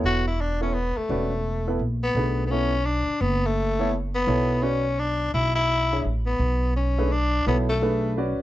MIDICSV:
0, 0, Header, 1, 5, 480
1, 0, Start_track
1, 0, Tempo, 353357
1, 53, Time_signature, 3, 2, 24, 8
1, 11438, End_track
2, 0, Start_track
2, 0, Title_t, "Upright piano"
2, 0, Program_c, 0, 0
2, 0, Note_on_c, 0, 59, 59
2, 0, Note_on_c, 0, 64, 52
2, 0, Note_on_c, 0, 69, 52
2, 0, Note_on_c, 0, 73, 66
2, 296, Note_off_c, 0, 59, 0
2, 299, Note_off_c, 0, 64, 0
2, 301, Note_off_c, 0, 69, 0
2, 301, Note_off_c, 0, 73, 0
2, 826, Note_on_c, 0, 59, 54
2, 828, Note_on_c, 0, 64, 54
2, 834, Note_on_c, 0, 69, 48
2, 838, Note_on_c, 0, 73, 66
2, 990, Note_off_c, 0, 59, 0
2, 991, Note_off_c, 0, 64, 0
2, 994, Note_off_c, 0, 69, 0
2, 996, Note_off_c, 0, 73, 0
2, 1491, Note_on_c, 0, 61, 54
2, 1494, Note_on_c, 0, 66, 48
2, 1497, Note_on_c, 0, 71, 54
2, 1500, Note_on_c, 0, 74, 58
2, 1766, Note_off_c, 0, 61, 0
2, 1768, Note_off_c, 0, 66, 0
2, 1769, Note_off_c, 0, 71, 0
2, 1771, Note_off_c, 0, 74, 0
2, 2270, Note_on_c, 0, 59, 53
2, 2275, Note_on_c, 0, 64, 55
2, 2275, Note_on_c, 0, 69, 54
2, 2281, Note_on_c, 0, 71, 60
2, 2432, Note_off_c, 0, 59, 0
2, 2435, Note_off_c, 0, 64, 0
2, 2435, Note_off_c, 0, 69, 0
2, 2438, Note_off_c, 0, 71, 0
2, 2931, Note_on_c, 0, 57, 53
2, 2932, Note_on_c, 0, 62, 47
2, 2940, Note_on_c, 0, 68, 51
2, 2945, Note_on_c, 0, 71, 63
2, 3395, Note_off_c, 0, 57, 0
2, 3396, Note_off_c, 0, 62, 0
2, 3400, Note_off_c, 0, 68, 0
2, 3403, Note_off_c, 0, 71, 0
2, 3413, Note_on_c, 0, 59, 60
2, 3417, Note_on_c, 0, 64, 54
2, 3419, Note_on_c, 0, 69, 47
2, 3423, Note_on_c, 0, 73, 68
2, 3688, Note_off_c, 0, 59, 0
2, 3690, Note_off_c, 0, 64, 0
2, 3691, Note_off_c, 0, 69, 0
2, 3693, Note_off_c, 0, 73, 0
2, 5150, Note_on_c, 0, 59, 64
2, 5157, Note_on_c, 0, 64, 56
2, 5157, Note_on_c, 0, 69, 61
2, 5163, Note_on_c, 0, 73, 76
2, 5313, Note_off_c, 0, 59, 0
2, 5316, Note_off_c, 0, 64, 0
2, 5316, Note_off_c, 0, 69, 0
2, 5319, Note_off_c, 0, 73, 0
2, 5803, Note_on_c, 0, 59, 61
2, 5805, Note_on_c, 0, 64, 59
2, 5809, Note_on_c, 0, 73, 79
2, 5810, Note_on_c, 0, 69, 59
2, 6272, Note_off_c, 0, 59, 0
2, 6273, Note_off_c, 0, 64, 0
2, 6275, Note_off_c, 0, 69, 0
2, 6275, Note_off_c, 0, 73, 0
2, 6285, Note_on_c, 0, 61, 56
2, 6288, Note_on_c, 0, 66, 50
2, 6294, Note_on_c, 0, 71, 55
2, 6300, Note_on_c, 0, 74, 57
2, 6564, Note_off_c, 0, 61, 0
2, 6565, Note_off_c, 0, 66, 0
2, 6568, Note_off_c, 0, 71, 0
2, 6572, Note_off_c, 0, 74, 0
2, 8046, Note_on_c, 0, 62, 49
2, 8049, Note_on_c, 0, 68, 48
2, 8054, Note_on_c, 0, 73, 51
2, 8057, Note_on_c, 0, 76, 59
2, 8200, Note_off_c, 0, 62, 0
2, 8202, Note_off_c, 0, 68, 0
2, 8204, Note_off_c, 0, 73, 0
2, 8206, Note_off_c, 0, 76, 0
2, 9484, Note_on_c, 0, 57, 59
2, 9488, Note_on_c, 0, 62, 58
2, 9493, Note_on_c, 0, 68, 61
2, 9494, Note_on_c, 0, 71, 68
2, 9639, Note_off_c, 0, 57, 0
2, 9641, Note_off_c, 0, 62, 0
2, 9643, Note_off_c, 0, 68, 0
2, 9644, Note_off_c, 0, 71, 0
2, 10144, Note_on_c, 0, 59, 61
2, 10150, Note_on_c, 0, 69, 60
2, 10151, Note_on_c, 0, 64, 55
2, 10158, Note_on_c, 0, 73, 66
2, 10412, Note_off_c, 0, 59, 0
2, 10415, Note_off_c, 0, 64, 0
2, 10415, Note_off_c, 0, 69, 0
2, 10419, Note_off_c, 0, 73, 0
2, 10621, Note_on_c, 0, 62, 55
2, 10625, Note_on_c, 0, 57, 69
2, 10629, Note_on_c, 0, 68, 55
2, 10631, Note_on_c, 0, 71, 69
2, 11079, Note_off_c, 0, 62, 0
2, 11080, Note_off_c, 0, 57, 0
2, 11082, Note_off_c, 0, 68, 0
2, 11083, Note_off_c, 0, 71, 0
2, 11102, Note_on_c, 0, 61, 69
2, 11106, Note_on_c, 0, 71, 56
2, 11108, Note_on_c, 0, 66, 60
2, 11112, Note_on_c, 0, 74, 70
2, 11370, Note_off_c, 0, 61, 0
2, 11372, Note_off_c, 0, 71, 0
2, 11373, Note_off_c, 0, 66, 0
2, 11375, Note_off_c, 0, 74, 0
2, 11438, End_track
3, 0, Start_track
3, 0, Title_t, "Tenor saxophone"
3, 0, Program_c, 1, 66
3, 78, Note_on_c, 1, 66, 101
3, 349, Note_off_c, 1, 66, 0
3, 375, Note_on_c, 1, 64, 86
3, 557, Note_on_c, 1, 62, 83
3, 578, Note_off_c, 1, 64, 0
3, 841, Note_off_c, 1, 62, 0
3, 849, Note_on_c, 1, 61, 78
3, 1002, Note_on_c, 1, 59, 89
3, 1023, Note_off_c, 1, 61, 0
3, 1315, Note_on_c, 1, 57, 72
3, 1335, Note_off_c, 1, 59, 0
3, 2453, Note_off_c, 1, 57, 0
3, 2760, Note_on_c, 1, 59, 78
3, 3305, Note_off_c, 1, 59, 0
3, 3352, Note_on_c, 1, 59, 55
3, 3411, Note_on_c, 1, 61, 82
3, 3431, Note_off_c, 1, 59, 0
3, 3871, Note_on_c, 1, 62, 87
3, 3891, Note_off_c, 1, 61, 0
3, 4359, Note_on_c, 1, 59, 86
3, 4380, Note_off_c, 1, 62, 0
3, 4700, Note_on_c, 1, 57, 92
3, 4720, Note_off_c, 1, 59, 0
3, 5345, Note_off_c, 1, 57, 0
3, 5635, Note_on_c, 1, 59, 87
3, 6286, Note_on_c, 1, 61, 84
3, 6306, Note_off_c, 1, 59, 0
3, 6778, Note_on_c, 1, 62, 89
3, 6799, Note_off_c, 1, 61, 0
3, 7246, Note_off_c, 1, 62, 0
3, 7254, Note_on_c, 1, 64, 98
3, 7537, Note_off_c, 1, 64, 0
3, 7544, Note_on_c, 1, 64, 106
3, 8160, Note_off_c, 1, 64, 0
3, 8508, Note_on_c, 1, 59, 83
3, 9122, Note_off_c, 1, 59, 0
3, 9183, Note_on_c, 1, 61, 83
3, 9665, Note_on_c, 1, 62, 99
3, 9685, Note_off_c, 1, 61, 0
3, 10138, Note_off_c, 1, 62, 0
3, 10156, Note_on_c, 1, 59, 80
3, 10288, Note_off_c, 1, 59, 0
3, 10449, Note_on_c, 1, 57, 72
3, 11052, Note_off_c, 1, 57, 0
3, 11438, End_track
4, 0, Start_track
4, 0, Title_t, "Upright bass"
4, 0, Program_c, 2, 32
4, 51, Note_on_c, 2, 28, 80
4, 1263, Note_off_c, 2, 28, 0
4, 1484, Note_on_c, 2, 28, 82
4, 2395, Note_off_c, 2, 28, 0
4, 2434, Note_on_c, 2, 34, 66
4, 2890, Note_off_c, 2, 34, 0
4, 2917, Note_on_c, 2, 35, 88
4, 4136, Note_off_c, 2, 35, 0
4, 4358, Note_on_c, 2, 30, 86
4, 5753, Note_off_c, 2, 30, 0
4, 5799, Note_on_c, 2, 35, 88
4, 7192, Note_off_c, 2, 35, 0
4, 7252, Note_on_c, 2, 35, 90
4, 8159, Note_off_c, 2, 35, 0
4, 8217, Note_on_c, 2, 33, 61
4, 8662, Note_off_c, 2, 33, 0
4, 8685, Note_on_c, 2, 35, 83
4, 10074, Note_off_c, 2, 35, 0
4, 10140, Note_on_c, 2, 35, 94
4, 11345, Note_off_c, 2, 35, 0
4, 11438, End_track
5, 0, Start_track
5, 0, Title_t, "Muted upright bass strokes"
5, 1318, Note_on_c, 9, 29, 34
5, 1453, Note_off_c, 9, 29, 0
5, 4184, Note_on_c, 9, 29, 34
5, 4320, Note_off_c, 9, 29, 0
5, 11394, Note_on_c, 9, 29, 35
5, 11438, Note_off_c, 9, 29, 0
5, 11438, End_track
0, 0, End_of_file